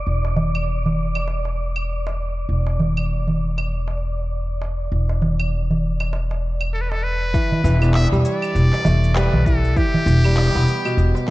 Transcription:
Already playing: D5
0.07 E1
0.25 darbuka tek
0.36 darbuka tek, darbuka dum
0.55 claves
0.86 darbuka dum
1.15 darbuka ka, claves
1.28 darbuka tek
1.45 darbuka ka
1.76 claves
2.07 darbuka tek
2.49 E1
2.67 darbuka tek
2.80 darbuka dum
2.97 claves
3.27 darbuka dum
3.58 darbuka ka, claves
3.88 darbuka tek
4.62 darbuka tek
4.92 E1
5.09 darbuka tek
5.22 darbuka ka, darbuka tek, darbuka dum
5.40 claves
5.71 darbuka dum
6.00 darbuka ka, claves
6.13 darbuka tek
6.31 darbuka ka
6.61 claves
6.73 A4
6.81 B4
6.90 A4, darbuka tek
7.03 B4
7.34 E3, kick, shaker
7.51 darbuka tek, darbuka dum
7.64 E1 E3, shaker
7.82 D4, claves, shaker
7.94 E5, clap, shaker
8.12 E1 G3, shaker
8.25 D5, shaker
8.42 darbuka ka, claves, shaker
8.55 E1, shaker
8.73 clap, darbuka tek, shaker
8.85 E1 A3, darbuka tek, darbuka dum, shaker
9.04 shaker
9.15 G3 B4, clap, shaker
9.33 B1, darbuka dum
9.46 E3 A4, kick, shaker
9.64 shaker
9.77 E3 G4, kick, shaker
9.94 darbuka dum
10.06 E1, darbuka ka, shaker
10.24 G3, claves, shaker
10.37 clap, shaker
10.55 E1 B3, shaker
10.68 shaker
10.85 B2, darbuka ka, claves, shaker
10.97 E1, shaker
11.15 darbuka ka, darbuka tek, shaker

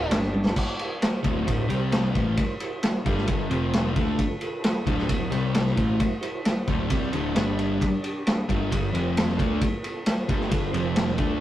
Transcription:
0.09 G1 D4 G4 D5, snare, ride
0.23 snare
0.32 D4 G4 D5, high tom
0.46 snare
0.54 E4 F#4 C5, kick, crash
0.76 E4 F#4 C5, ride
1.01 E4 F#4 C5, snare, ride
1.22 D1 D2 A2 D3 E4 F#4 C5, kick, ride
1.45 D1 D2 A2 E4 F#4 C5, kick, ride
1.69 C2 C3 G3 C4 G4 C5, ride
1.92 snare, ride
2.14 A1 A2 E3 A3 E4 F#4 C5, kick, ride
2.37 kick, ride
2.60 E4 F#4 C5, ride
2.82 E4 F#4 C5, snare, ride
3.05 G1 G2 D3 G3 F4 A4 B4, kick, ride
3.17 snare
3.27 G1 G2 D3, kick, ride
3.49 F1 F2 C3 F3 C4 F4 C5, ride
3.73 snare, ride
3.94 D2 D3 A3 D4 F4 A4 B4, kick, ride
4.19 kick, ride
4.38 F4 A4 B4, ride
4.62 F4 A4 B4, snare, ride
4.84 D1 D2 A2 D3 E4 F#4 C5, kick, ride
4.99 snare
5.09 D1 D2 A2, kick, ride
5.30 C2 C3 G3 C4 G4 C5, ride
5.54 snare, ride
5.66 snare
5.76 A1 A2 E3 A3 E4 F#4 C5, kick, ride
6.00 kick, ride
6.21 E4 F#4 C5, ride
6.43 E4 F#4 C5, snare, ride
6.65 D1 D2 A2 D3 E4 F#4 C5, kick, ride
6.87 C2 C3 G3 C4 E4 F#4 D5, kick, ride
7.12 D1 D2 A2 D3 E4 F#4 C5, ride
7.34 G1 G2 D3 G3 D4 G4 D5, snare, ride
7.56 D4 G4 D5, ride
7.79 D4 G4 D5, kick, ride
8.03 D4 G4 D5, ride
8.26 D4 G4 A4, snare, ride
8.48 G1 G2 D3 G3 B3 F4 A4, kick, ride
8.71 G1 G2 D3, kick, ride
8.93 F1 F2 C3 F3 C4 F4 C5, ride
9.17 snare, ride
9.29 snare
9.37 D2 D3 A3 B3 D4 F4 A4, kick, ride
9.61 kick, ride
9.83 B3 F4 A4, ride
10.05 B3 F4 A4, snare, ride
10.27 G1 G2 D3 G3 B3 F4 A4, kick, ride
10.41 snare
10.49 G1 G2 D3 B3 F4 A4, kick, ride
10.71 F1 F2 C3 F3 C4 F4 C5, ride
10.96 snare, ride
11.08 snare
11.16 D2 D3 A3 B3 D4 F4 A4, kick, ride

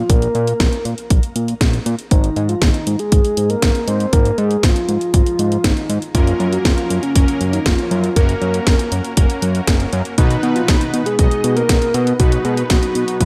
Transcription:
Already playing: F4
0.10 A#1 A#4, kick, closed hi-hat
0.22 closed hi-hat
0.35 A#2, closed hi-hat
0.47 closed hi-hat
0.60 A#1, kick, snare, closed hi-hat
0.73 closed hi-hat
0.85 A#2, closed hi-hat
0.98 closed hi-hat
1.10 A#1, kick, closed hi-hat
1.23 closed hi-hat
1.36 A#2, closed hi-hat
1.48 closed hi-hat
1.61 A#1, kick, snare, closed hi-hat
1.73 closed hi-hat
1.86 A#2, closed hi-hat
1.99 closed hi-hat
2.11 G#1 D#4, kick, closed hi-hat
2.24 closed hi-hat
2.36 G#2, closed hi-hat
2.49 F4, closed hi-hat
2.62 G#1 D#4, kick, snare, closed hi-hat
2.74 closed hi-hat
2.87 G#2, closed hi-hat
2.99 G#4, closed hi-hat
3.12 G#1, kick, closed hi-hat
3.25 closed hi-hat
3.37 G#2, closed hi-hat
3.50 A#4, closed hi-hat
3.62 G#1, kick, snare, closed hi-hat
3.75 closed hi-hat
3.88 G#2 C5, closed hi-hat
4.00 closed hi-hat
4.13 G#1 A#4, kick, closed hi-hat
4.25 closed hi-hat
4.38 G#2 G#4, closed hi-hat
4.51 closed hi-hat
4.63 G#1 F4, kick, snare, closed hi-hat
4.76 closed hi-hat
4.89 G#2, closed hi-hat
5.01 closed hi-hat
5.14 G#1 F4, kick, closed hi-hat
5.26 closed hi-hat
5.39 G#2, closed hi-hat
5.52 closed hi-hat
5.64 G#1 D#4, kick, snare, closed hi-hat
5.77 closed hi-hat
5.89 G#2, closed hi-hat
6.02 closed hi-hat
6.15 F#1 F#3 A#3 C#4 F4 A#4, kick, closed hi-hat
6.27 closed hi-hat
6.40 F#2, closed hi-hat
6.52 F#4, closed hi-hat
6.65 F#1 F4, kick, snare, closed hi-hat
6.78 closed hi-hat
6.90 F#2, closed hi-hat
7.03 C#4, closed hi-hat
7.15 F#1 F#3 A#3 C#4 A#4, kick, closed hi-hat
7.28 closed hi-hat
7.41 F#2, closed hi-hat
7.53 D#4, closed hi-hat
7.66 F#1 F4, kick, snare, closed hi-hat
7.79 closed hi-hat
7.91 F#2, closed hi-hat
8.04 closed hi-hat
8.16 F#1 A#3 C#4 F#4 A#4, kick, closed hi-hat
8.29 closed hi-hat
8.42 F#2, closed hi-hat
8.54 closed hi-hat
8.67 F#1, kick, snare, closed hi-hat
8.79 closed hi-hat
8.92 F#2, closed hi-hat
9.05 closed hi-hat
9.17 F#1 A#3 C#4 F#4 A#4, kick, closed hi-hat
9.30 closed hi-hat
9.42 F#2, closed hi-hat
9.55 closed hi-hat
9.67 F#1, kick, snare, closed hi-hat
9.80 closed hi-hat
9.93 F#2, closed hi-hat
10.05 closed hi-hat
10.18 B1 B2 B3 D#4 F#4 B4, kick, closed hi-hat
10.31 closed hi-hat
10.43 B2, closed hi-hat
10.56 F4, closed hi-hat
10.68 B1 D#4, kick, snare, closed hi-hat
10.81 closed hi-hat
10.94 B2, closed hi-hat
11.06 G#4, closed hi-hat
11.19 B1 B2 B3 D#4 F#4 D#5, kick, closed hi-hat
11.31 closed hi-hat
11.44 B2, closed hi-hat
11.56 A#4, closed hi-hat
11.69 B1, kick, snare, closed hi-hat
11.82 closed hi-hat
11.94 B2 B4, closed hi-hat
12.07 closed hi-hat
12.20 B1 B2 B3 D#4 F#4 B4, kick, closed hi-hat
12.32 closed hi-hat
12.45 B2 G#4, closed hi-hat
12.57 closed hi-hat
12.70 B1 F#4, kick, snare, closed hi-hat
12.83 closed hi-hat
12.95 B2, closed hi-hat
13.08 closed hi-hat
13.20 B1 B2 F#3 B3 D#4 F4 B4, kick, closed hi-hat, high tom

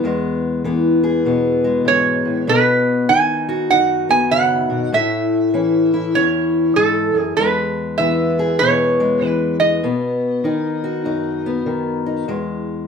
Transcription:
Already playing: B3
0.04 E2 G#3
0.64 E3 B3
1.04 G#4
1.25 B2 B3
1.64 G#3
1.85 G#2 C#5
2.25 A2
2.47 B2 B3 B4
3.09 D#3 D#4 G#5
3.49 F#4
3.70 F#2 D#4 F#5
4.09 B3 G#5
4.31 C#3 F#5
4.70 B2
4.92 A2 A3 E5
5.54 E3 C#4
5.94 E4
6.15 E2 C#4 C#5
6.76 G#2 A4
7.15 F#2 G#4
7.37 E2 G#3 B4
7.98 E3 B3 E5
8.39 G#4
8.59 B2 B3 C#5
9.00 G#3
9.22 E3
9.28 B4
9.60 B3 D#5
9.83 B2 B3
10.44 D#3 D#4
10.84 F#4
11.05 F#2 D#4
11.46 B3
11.66 D#3
12.06 D#4
12.28 E2 G#3

